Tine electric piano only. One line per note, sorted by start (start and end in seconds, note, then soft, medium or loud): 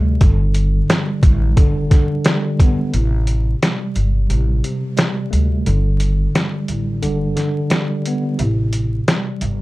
0.00 0.23 C3 medium
0.00 0.23 G3 medium
0.00 0.20 A3 medium
0.21 1.55 D3 medium
0.89 2.24 G3 medium
1.56 1.89 D3 medium
1.90 2.93 D3 medium
2.25 2.94 G3 medium
2.62 2.95 B3 medium
2.93 4.28 C3 medium
3.63 4.95 G3 medium
4.29 4.63 C3 medium
4.64 5.66 C3 medium
4.97 5.66 G3 medium
5.31 5.66 A3 medium
5.67 7.01 D3 medium
6.35 7.69 G3 medium
7.02 7.35 D3 medium
7.36 8.39 D3 medium
7.71 8.39 G3 medium
8.07 8.40 B3 medium
8.38 9.62 C3 medium
9.09 9.62 G3 medium